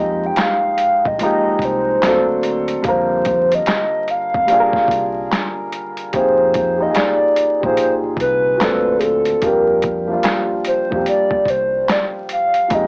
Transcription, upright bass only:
Already playing: F2
1.06 A#1
1.46 muted upright bass stroke
1.59 C2
2.03 D2
2.85 F2
4.35 F2
4.73 muted upright bass stroke
4.88 C2
6.14 F2
7.64 A#1
8.04 muted upright bass stroke
8.17 C2
8.61 D2
9.43 F2
10.92 F2
11.31 muted upright bass stroke
11.46 C2
12.71 F2

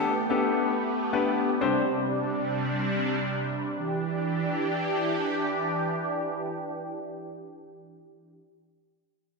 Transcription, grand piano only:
Already playing: B3 D4 G4 A4
0.30 B3 D4 G4 A4
1.13 B3 D4 G4 B4
1.61 C4 D4 G4 C5

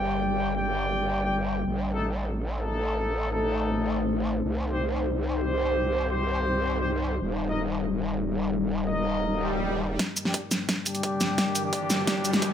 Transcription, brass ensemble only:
Already playing: G4 D5 G5
0.54 G4 D5 G5
1.24 G4 D5 G5
1.93 A3 D#4 A4
2.54 A3 D#4 A4
3.32 A3 D#4 A4
4.70 C4 G4 C5
5.31 C4 G4 C5
6.09 C4 G4 C5
6.79 C4 G4 C5
7.48 D#4 A#4 D#5
8.87 D#4 A#4 D#5
10.25 G3 D4 G4
10.86 G3 D4 G4
11.64 G3 D4 G4
12.33 G3 D4 G4

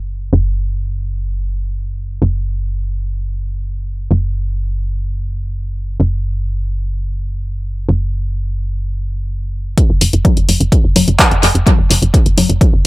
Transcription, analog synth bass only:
Already playing: F#1
0.33 F#1
2.22 F#1
4.11 F#1
6.00 F#1
7.89 F#1
9.90 F#1
10.01 F#1
10.13 F#1
10.37 F#1
10.49 F#1
10.60 F#1
10.84 F#1
10.96 F#1
11.08 F#1
11.31 F#1
11.43 F#1
11.55 F#1
11.78 F#1
11.90 F#1
12.02 F#1
12.26 F#1
12.38 F#1
12.49 F#1
12.73 F#1

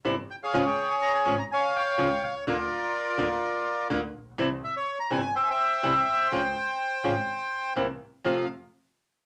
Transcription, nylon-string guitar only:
0.05 C3 E3 G3 C4 E4
0.53 C#3 F3 G#3 C#4 F4
1.25 C#3 F3 G#3 C#4 F4
1.98 C#3 F3 G#3 C#4 F4
2.47 D3 A#3 D4 F4
3.18 D3 A#3 D4 F4
3.90 D3 A#3 D4 F4
4.38 C3 E3 G3 C4 E4
5.10 C3 E3 G3 C4 E4
5.83 C3 E3 G3 C4 E4
6.32 C#3 F3 G#3 C#4 F4
7.04 C#3 F3 G#3 C#4 F4
7.76 C3 E3 A#3 C4 E4
8.24 F2 C3 F3 A3 C4 F4

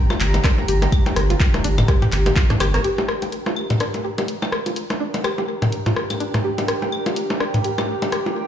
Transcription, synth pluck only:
0.10 F4
0.44 D4
0.68 G4
0.82 G4
1.06 G5
1.30 F4
1.64 D4
1.88 G4
2.02 G4
2.26 G4
2.36 F4
2.50 D4
2.60 G4
2.74 A#4
2.84 G4
2.98 G4
3.22 G5
3.46 F4
3.80 D4
4.04 G4
4.18 G4
4.42 G5
4.66 F4
5.00 D4
5.24 G4
5.38 G4
5.62 G5
5.86 F4
6.20 D4
6.44 G4
6.58 G4
6.82 G5
7.06 F4
7.40 D4
7.64 G4
7.78 G4
8.02 G5
8.26 F4

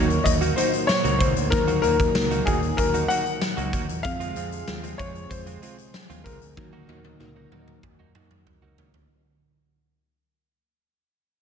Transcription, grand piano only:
Already playing: C#5
0.24 D#5
0.56 C5
0.87 C#5
1.19 C5
1.50 A#4
1.82 A#4
2.45 G#4
2.77 A#4
3.08 F#5
4.03 F5
4.98 C#5
5.30 C5
6.24 A#4

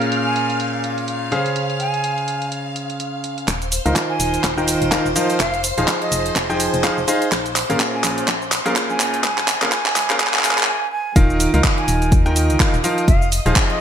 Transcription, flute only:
0.26 G#5
1.80 G#5
4.10 G#5
5.40 F5
6.01 D#5
7.94 G#5
8.90 G#5
9.24 G#5
9.72 G#5
10.20 G#5
10.44 G#5
10.68 G#5
10.92 G#5
11.78 G#5
13.08 F5
13.70 D#5

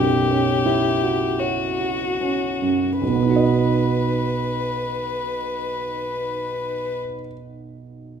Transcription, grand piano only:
Already playing: B1 F#2 C#4 E4 F#4 C#5
0.31 C#4
0.66 E4
1.02 F#4
1.39 C#5
1.80 F#4
2.21 C#4
2.62 F#2
3.01 B1
3.08 B2
3.16 B3
3.22 D#4
3.30 F#4
3.36 D#5

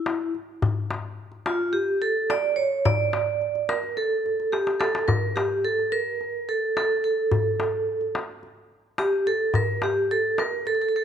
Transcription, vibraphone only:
Already playing: E4
1.47 F4
1.73 G4
2.02 A4
2.30 D5
2.56 C#5
2.85 D5
3.69 A#4
3.97 A4
4.52 G4
4.80 A4
5.08 A#4
5.36 G4
5.65 A4
5.92 A#4
6.49 A4
6.77 A4
7.04 A4
8.99 G4
9.27 A4
9.55 A#4
9.83 G4
10.11 A4
10.39 A#4
10.67 A4
10.75 A4
10.82 A4
10.89 A4
10.96 A4

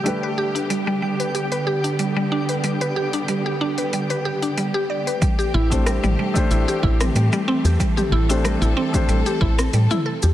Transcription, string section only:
Already playing: G4
0.05 D3 G3 B3
5.21 E3 A3 C4 G4
7.80 A4

